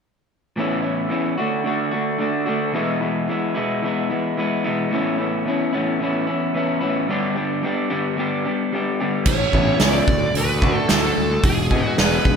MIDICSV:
0, 0, Header, 1, 5, 480
1, 0, Start_track
1, 0, Key_signature, 3, "major"
1, 0, Tempo, 543478
1, 503, Time_signature, 4, 2, 24, 8
1, 10919, End_track
2, 0, Start_track
2, 0, Title_t, "Lead electric guitar"
2, 0, Program_c, 0, 29
2, 8186, Note_on_c, 0, 73, 71
2, 8629, Note_off_c, 0, 73, 0
2, 8678, Note_on_c, 0, 74, 70
2, 9116, Note_off_c, 0, 74, 0
2, 9167, Note_on_c, 0, 71, 77
2, 9601, Note_off_c, 0, 71, 0
2, 9631, Note_on_c, 0, 69, 59
2, 10073, Note_off_c, 0, 69, 0
2, 10114, Note_on_c, 0, 68, 76
2, 10555, Note_off_c, 0, 68, 0
2, 10592, Note_on_c, 0, 71, 72
2, 10919, Note_off_c, 0, 71, 0
2, 10919, End_track
3, 0, Start_track
3, 0, Title_t, "Clean electric guitar"
3, 0, Program_c, 1, 27
3, 495, Note_on_c, 1, 45, 74
3, 505, Note_on_c, 1, 52, 75
3, 509, Note_on_c, 1, 59, 67
3, 517, Note_on_c, 1, 61, 78
3, 526, Note_on_c, 1, 64, 77
3, 717, Note_off_c, 1, 64, 0
3, 728, Note_on_c, 1, 64, 52
3, 731, Note_off_c, 1, 61, 0
3, 742, Note_on_c, 1, 61, 45
3, 744, Note_off_c, 1, 59, 0
3, 754, Note_on_c, 1, 59, 43
3, 953, Note_off_c, 1, 52, 0
3, 961, Note_off_c, 1, 59, 0
3, 963, Note_on_c, 1, 52, 60
3, 970, Note_off_c, 1, 61, 0
3, 972, Note_on_c, 1, 59, 54
3, 977, Note_off_c, 1, 45, 0
3, 979, Note_off_c, 1, 64, 0
3, 981, Note_on_c, 1, 61, 64
3, 990, Note_on_c, 1, 64, 60
3, 1197, Note_off_c, 1, 52, 0
3, 1201, Note_off_c, 1, 59, 0
3, 1206, Note_off_c, 1, 61, 0
3, 1210, Note_off_c, 1, 64, 0
3, 1215, Note_on_c, 1, 66, 72
3, 1224, Note_on_c, 1, 62, 63
3, 1233, Note_on_c, 1, 57, 63
3, 1240, Note_on_c, 1, 50, 56
3, 1441, Note_off_c, 1, 50, 0
3, 1452, Note_on_c, 1, 50, 58
3, 1454, Note_off_c, 1, 57, 0
3, 1458, Note_off_c, 1, 62, 0
3, 1464, Note_on_c, 1, 57, 61
3, 1466, Note_off_c, 1, 66, 0
3, 1469, Note_on_c, 1, 62, 67
3, 1476, Note_on_c, 1, 66, 69
3, 1680, Note_off_c, 1, 66, 0
3, 1690, Note_on_c, 1, 66, 57
3, 1695, Note_off_c, 1, 62, 0
3, 1705, Note_off_c, 1, 57, 0
3, 1705, Note_on_c, 1, 62, 44
3, 1715, Note_on_c, 1, 57, 47
3, 1919, Note_off_c, 1, 50, 0
3, 1927, Note_off_c, 1, 57, 0
3, 1930, Note_on_c, 1, 50, 67
3, 1937, Note_off_c, 1, 62, 0
3, 1938, Note_on_c, 1, 57, 53
3, 1947, Note_on_c, 1, 62, 70
3, 1948, Note_off_c, 1, 66, 0
3, 1959, Note_on_c, 1, 66, 62
3, 2159, Note_off_c, 1, 66, 0
3, 2170, Note_on_c, 1, 66, 62
3, 2171, Note_off_c, 1, 62, 0
3, 2182, Note_off_c, 1, 57, 0
3, 2182, Note_on_c, 1, 62, 60
3, 2188, Note_off_c, 1, 50, 0
3, 2192, Note_on_c, 1, 57, 66
3, 2198, Note_on_c, 1, 50, 60
3, 2399, Note_off_c, 1, 66, 0
3, 2405, Note_off_c, 1, 62, 0
3, 2410, Note_off_c, 1, 57, 0
3, 2410, Note_on_c, 1, 40, 71
3, 2413, Note_off_c, 1, 50, 0
3, 2417, Note_on_c, 1, 47, 69
3, 2422, Note_on_c, 1, 52, 86
3, 2427, Note_on_c, 1, 56, 76
3, 2429, Note_on_c, 1, 59, 77
3, 2436, Note_on_c, 1, 64, 79
3, 2653, Note_off_c, 1, 64, 0
3, 2657, Note_on_c, 1, 64, 57
3, 2661, Note_off_c, 1, 59, 0
3, 2664, Note_off_c, 1, 56, 0
3, 2664, Note_on_c, 1, 59, 57
3, 2674, Note_on_c, 1, 56, 50
3, 2678, Note_off_c, 1, 52, 0
3, 2681, Note_on_c, 1, 52, 46
3, 2892, Note_off_c, 1, 52, 0
3, 2893, Note_off_c, 1, 40, 0
3, 2895, Note_off_c, 1, 56, 0
3, 2895, Note_on_c, 1, 52, 62
3, 2896, Note_off_c, 1, 47, 0
3, 2905, Note_on_c, 1, 56, 58
3, 2912, Note_off_c, 1, 59, 0
3, 2916, Note_on_c, 1, 59, 65
3, 2921, Note_off_c, 1, 64, 0
3, 2925, Note_on_c, 1, 64, 60
3, 3130, Note_off_c, 1, 64, 0
3, 3133, Note_on_c, 1, 64, 75
3, 3135, Note_off_c, 1, 56, 0
3, 3138, Note_off_c, 1, 59, 0
3, 3142, Note_on_c, 1, 59, 68
3, 3145, Note_on_c, 1, 56, 65
3, 3147, Note_off_c, 1, 52, 0
3, 3151, Note_on_c, 1, 52, 63
3, 3154, Note_on_c, 1, 47, 53
3, 3159, Note_on_c, 1, 40, 58
3, 3369, Note_off_c, 1, 52, 0
3, 3379, Note_on_c, 1, 52, 64
3, 3381, Note_off_c, 1, 56, 0
3, 3391, Note_on_c, 1, 56, 63
3, 3396, Note_off_c, 1, 59, 0
3, 3397, Note_off_c, 1, 64, 0
3, 3400, Note_on_c, 1, 59, 61
3, 3408, Note_on_c, 1, 64, 69
3, 3607, Note_off_c, 1, 64, 0
3, 3618, Note_on_c, 1, 64, 52
3, 3623, Note_off_c, 1, 59, 0
3, 3625, Note_off_c, 1, 47, 0
3, 3625, Note_off_c, 1, 56, 0
3, 3627, Note_off_c, 1, 40, 0
3, 3627, Note_on_c, 1, 59, 52
3, 3632, Note_off_c, 1, 52, 0
3, 3636, Note_on_c, 1, 56, 48
3, 3643, Note_on_c, 1, 52, 43
3, 3852, Note_off_c, 1, 52, 0
3, 3859, Note_off_c, 1, 56, 0
3, 3862, Note_on_c, 1, 52, 56
3, 3870, Note_on_c, 1, 56, 65
3, 3873, Note_off_c, 1, 59, 0
3, 3875, Note_off_c, 1, 64, 0
3, 3876, Note_on_c, 1, 59, 69
3, 3885, Note_on_c, 1, 64, 71
3, 4090, Note_off_c, 1, 64, 0
3, 4101, Note_on_c, 1, 64, 72
3, 4103, Note_off_c, 1, 56, 0
3, 4104, Note_off_c, 1, 52, 0
3, 4106, Note_off_c, 1, 59, 0
3, 4109, Note_on_c, 1, 59, 66
3, 4114, Note_on_c, 1, 56, 64
3, 4115, Note_on_c, 1, 52, 61
3, 4123, Note_on_c, 1, 47, 63
3, 4128, Note_on_c, 1, 40, 57
3, 4324, Note_off_c, 1, 64, 0
3, 4328, Note_off_c, 1, 47, 0
3, 4330, Note_off_c, 1, 56, 0
3, 4331, Note_off_c, 1, 52, 0
3, 4332, Note_on_c, 1, 45, 74
3, 4337, Note_off_c, 1, 40, 0
3, 4343, Note_on_c, 1, 52, 72
3, 4349, Note_off_c, 1, 59, 0
3, 4349, Note_on_c, 1, 59, 74
3, 4357, Note_on_c, 1, 61, 82
3, 4364, Note_on_c, 1, 64, 82
3, 4567, Note_off_c, 1, 64, 0
3, 4578, Note_on_c, 1, 64, 56
3, 4580, Note_off_c, 1, 61, 0
3, 4591, Note_on_c, 1, 61, 53
3, 4597, Note_off_c, 1, 59, 0
3, 4601, Note_on_c, 1, 59, 49
3, 4810, Note_off_c, 1, 52, 0
3, 4813, Note_off_c, 1, 45, 0
3, 4821, Note_on_c, 1, 52, 57
3, 4827, Note_off_c, 1, 61, 0
3, 4829, Note_off_c, 1, 59, 0
3, 4832, Note_on_c, 1, 59, 61
3, 4834, Note_off_c, 1, 64, 0
3, 4837, Note_on_c, 1, 61, 70
3, 4845, Note_on_c, 1, 64, 71
3, 5047, Note_off_c, 1, 64, 0
3, 5056, Note_off_c, 1, 61, 0
3, 5058, Note_on_c, 1, 64, 66
3, 5067, Note_on_c, 1, 61, 66
3, 5068, Note_off_c, 1, 52, 0
3, 5069, Note_off_c, 1, 59, 0
3, 5072, Note_on_c, 1, 59, 71
3, 5079, Note_on_c, 1, 52, 61
3, 5084, Note_on_c, 1, 45, 56
3, 5292, Note_off_c, 1, 52, 0
3, 5303, Note_on_c, 1, 52, 60
3, 5313, Note_off_c, 1, 59, 0
3, 5313, Note_off_c, 1, 61, 0
3, 5316, Note_on_c, 1, 59, 60
3, 5320, Note_off_c, 1, 64, 0
3, 5324, Note_on_c, 1, 61, 69
3, 5331, Note_on_c, 1, 64, 66
3, 5525, Note_off_c, 1, 64, 0
3, 5536, Note_on_c, 1, 64, 54
3, 5543, Note_off_c, 1, 61, 0
3, 5550, Note_off_c, 1, 45, 0
3, 5553, Note_on_c, 1, 61, 54
3, 5560, Note_off_c, 1, 59, 0
3, 5564, Note_on_c, 1, 59, 45
3, 5767, Note_off_c, 1, 52, 0
3, 5778, Note_on_c, 1, 52, 64
3, 5784, Note_off_c, 1, 61, 0
3, 5787, Note_off_c, 1, 59, 0
3, 5790, Note_on_c, 1, 59, 66
3, 5792, Note_off_c, 1, 64, 0
3, 5794, Note_on_c, 1, 61, 63
3, 5803, Note_on_c, 1, 64, 66
3, 6001, Note_off_c, 1, 64, 0
3, 6010, Note_off_c, 1, 61, 0
3, 6012, Note_on_c, 1, 64, 65
3, 6019, Note_off_c, 1, 59, 0
3, 6021, Note_on_c, 1, 61, 68
3, 6022, Note_off_c, 1, 52, 0
3, 6030, Note_on_c, 1, 59, 57
3, 6032, Note_on_c, 1, 52, 62
3, 6041, Note_on_c, 1, 45, 56
3, 6239, Note_off_c, 1, 64, 0
3, 6244, Note_off_c, 1, 61, 0
3, 6248, Note_off_c, 1, 59, 0
3, 6250, Note_off_c, 1, 52, 0
3, 6254, Note_off_c, 1, 45, 0
3, 6256, Note_on_c, 1, 43, 67
3, 6263, Note_on_c, 1, 50, 72
3, 6265, Note_on_c, 1, 55, 76
3, 6273, Note_on_c, 1, 59, 77
3, 6277, Note_on_c, 1, 62, 81
3, 6279, Note_on_c, 1, 67, 88
3, 6487, Note_off_c, 1, 67, 0
3, 6498, Note_off_c, 1, 62, 0
3, 6498, Note_on_c, 1, 67, 57
3, 6505, Note_off_c, 1, 59, 0
3, 6509, Note_on_c, 1, 62, 57
3, 6513, Note_off_c, 1, 55, 0
3, 6516, Note_on_c, 1, 59, 44
3, 6524, Note_on_c, 1, 55, 45
3, 6726, Note_off_c, 1, 55, 0
3, 6736, Note_off_c, 1, 43, 0
3, 6737, Note_on_c, 1, 55, 59
3, 6739, Note_off_c, 1, 59, 0
3, 6740, Note_off_c, 1, 50, 0
3, 6744, Note_off_c, 1, 62, 0
3, 6749, Note_on_c, 1, 59, 69
3, 6753, Note_off_c, 1, 67, 0
3, 6755, Note_on_c, 1, 62, 70
3, 6764, Note_on_c, 1, 67, 73
3, 6967, Note_off_c, 1, 67, 0
3, 6971, Note_off_c, 1, 62, 0
3, 6976, Note_off_c, 1, 59, 0
3, 6978, Note_on_c, 1, 67, 76
3, 6981, Note_off_c, 1, 55, 0
3, 6981, Note_on_c, 1, 62, 69
3, 6986, Note_on_c, 1, 59, 63
3, 6991, Note_on_c, 1, 55, 66
3, 6997, Note_on_c, 1, 50, 57
3, 7002, Note_on_c, 1, 43, 54
3, 7204, Note_off_c, 1, 55, 0
3, 7214, Note_on_c, 1, 55, 64
3, 7218, Note_off_c, 1, 59, 0
3, 7225, Note_off_c, 1, 62, 0
3, 7228, Note_on_c, 1, 59, 67
3, 7229, Note_off_c, 1, 67, 0
3, 7236, Note_on_c, 1, 62, 59
3, 7240, Note_on_c, 1, 67, 72
3, 7449, Note_off_c, 1, 67, 0
3, 7458, Note_off_c, 1, 62, 0
3, 7459, Note_on_c, 1, 67, 55
3, 7467, Note_off_c, 1, 50, 0
3, 7468, Note_off_c, 1, 59, 0
3, 7469, Note_on_c, 1, 62, 45
3, 7470, Note_off_c, 1, 43, 0
3, 7477, Note_off_c, 1, 55, 0
3, 7478, Note_on_c, 1, 59, 50
3, 7488, Note_on_c, 1, 55, 42
3, 7695, Note_off_c, 1, 55, 0
3, 7706, Note_on_c, 1, 55, 66
3, 7707, Note_off_c, 1, 59, 0
3, 7715, Note_off_c, 1, 62, 0
3, 7718, Note_on_c, 1, 59, 62
3, 7720, Note_off_c, 1, 67, 0
3, 7726, Note_on_c, 1, 62, 63
3, 7730, Note_on_c, 1, 67, 67
3, 7941, Note_off_c, 1, 67, 0
3, 7947, Note_off_c, 1, 62, 0
3, 7949, Note_off_c, 1, 59, 0
3, 7951, Note_on_c, 1, 67, 61
3, 7954, Note_off_c, 1, 55, 0
3, 7958, Note_on_c, 1, 62, 66
3, 7960, Note_on_c, 1, 59, 59
3, 7965, Note_on_c, 1, 55, 63
3, 7971, Note_on_c, 1, 50, 58
3, 7974, Note_on_c, 1, 43, 52
3, 8170, Note_off_c, 1, 67, 0
3, 8174, Note_off_c, 1, 59, 0
3, 8174, Note_off_c, 1, 62, 0
3, 8177, Note_off_c, 1, 55, 0
3, 8180, Note_off_c, 1, 50, 0
3, 8182, Note_off_c, 1, 43, 0
3, 8426, Note_on_c, 1, 64, 73
3, 8428, Note_on_c, 1, 61, 63
3, 8430, Note_on_c, 1, 59, 63
3, 8436, Note_on_c, 1, 52, 62
3, 8663, Note_off_c, 1, 61, 0
3, 8663, Note_off_c, 1, 64, 0
3, 8664, Note_off_c, 1, 59, 0
3, 8668, Note_off_c, 1, 52, 0
3, 8677, Note_on_c, 1, 52, 55
3, 8680, Note_on_c, 1, 59, 61
3, 8684, Note_on_c, 1, 61, 62
3, 8686, Note_on_c, 1, 64, 66
3, 8908, Note_off_c, 1, 52, 0
3, 8909, Note_off_c, 1, 59, 0
3, 8911, Note_off_c, 1, 61, 0
3, 8912, Note_off_c, 1, 64, 0
3, 9389, Note_on_c, 1, 66, 74
3, 9393, Note_on_c, 1, 62, 68
3, 9397, Note_on_c, 1, 57, 72
3, 9401, Note_on_c, 1, 50, 66
3, 9620, Note_off_c, 1, 50, 0
3, 9624, Note_off_c, 1, 66, 0
3, 9627, Note_off_c, 1, 62, 0
3, 9629, Note_off_c, 1, 57, 0
3, 9630, Note_on_c, 1, 50, 66
3, 9637, Note_on_c, 1, 62, 57
3, 9638, Note_on_c, 1, 57, 67
3, 9640, Note_on_c, 1, 66, 63
3, 9937, Note_off_c, 1, 50, 0
3, 9941, Note_off_c, 1, 57, 0
3, 9941, Note_off_c, 1, 62, 0
3, 9942, Note_off_c, 1, 66, 0
3, 10343, Note_on_c, 1, 68, 75
3, 10351, Note_on_c, 1, 56, 66
3, 10351, Note_on_c, 1, 59, 73
3, 10355, Note_on_c, 1, 52, 64
3, 10581, Note_off_c, 1, 52, 0
3, 10582, Note_off_c, 1, 56, 0
3, 10582, Note_off_c, 1, 68, 0
3, 10586, Note_off_c, 1, 59, 0
3, 10592, Note_on_c, 1, 52, 60
3, 10592, Note_on_c, 1, 56, 55
3, 10599, Note_on_c, 1, 59, 59
3, 10602, Note_on_c, 1, 68, 68
3, 10898, Note_off_c, 1, 52, 0
3, 10899, Note_off_c, 1, 56, 0
3, 10902, Note_off_c, 1, 59, 0
3, 10904, Note_off_c, 1, 68, 0
3, 10919, End_track
4, 0, Start_track
4, 0, Title_t, "Fingered electric bass"
4, 0, Program_c, 2, 33
4, 8176, Note_on_c, 2, 33, 75
4, 8345, Note_off_c, 2, 33, 0
4, 8415, Note_on_c, 2, 33, 69
4, 8584, Note_off_c, 2, 33, 0
4, 8663, Note_on_c, 2, 37, 78
4, 8829, Note_off_c, 2, 37, 0
4, 8898, Note_on_c, 2, 38, 63
4, 9066, Note_off_c, 2, 38, 0
4, 9136, Note_on_c, 2, 38, 70
4, 9473, Note_off_c, 2, 38, 0
4, 9633, Note_on_c, 2, 38, 73
4, 9796, Note_off_c, 2, 38, 0
4, 9874, Note_on_c, 2, 38, 69
4, 10037, Note_off_c, 2, 38, 0
4, 10097, Note_on_c, 2, 28, 67
4, 10434, Note_off_c, 2, 28, 0
4, 10594, Note_on_c, 2, 28, 78
4, 10757, Note_off_c, 2, 28, 0
4, 10820, Note_on_c, 2, 28, 63
4, 10919, Note_off_c, 2, 28, 0
4, 10919, End_track
5, 0, Start_track
5, 0, Title_t, "Drums"
5, 8175, Note_on_c, 9, 49, 76
5, 8177, Note_on_c, 9, 36, 91
5, 8264, Note_off_c, 9, 49, 0
5, 8266, Note_off_c, 9, 36, 0
5, 8419, Note_on_c, 9, 36, 57
5, 8507, Note_off_c, 9, 36, 0
5, 8653, Note_on_c, 9, 38, 84
5, 8653, Note_on_c, 9, 46, 39
5, 8741, Note_off_c, 9, 38, 0
5, 8741, Note_off_c, 9, 46, 0
5, 8900, Note_on_c, 9, 36, 86
5, 8989, Note_off_c, 9, 36, 0
5, 9141, Note_on_c, 9, 46, 44
5, 9230, Note_off_c, 9, 46, 0
5, 9380, Note_on_c, 9, 36, 71
5, 9468, Note_off_c, 9, 36, 0
5, 9617, Note_on_c, 9, 38, 83
5, 9617, Note_on_c, 9, 46, 39
5, 9706, Note_off_c, 9, 38, 0
5, 9706, Note_off_c, 9, 46, 0
5, 10098, Note_on_c, 9, 46, 48
5, 10100, Note_on_c, 9, 36, 90
5, 10187, Note_off_c, 9, 46, 0
5, 10188, Note_off_c, 9, 36, 0
5, 10341, Note_on_c, 9, 36, 61
5, 10429, Note_off_c, 9, 36, 0
5, 10583, Note_on_c, 9, 38, 79
5, 10583, Note_on_c, 9, 46, 35
5, 10672, Note_off_c, 9, 38, 0
5, 10672, Note_off_c, 9, 46, 0
5, 10821, Note_on_c, 9, 36, 74
5, 10910, Note_off_c, 9, 36, 0
5, 10919, End_track
0, 0, End_of_file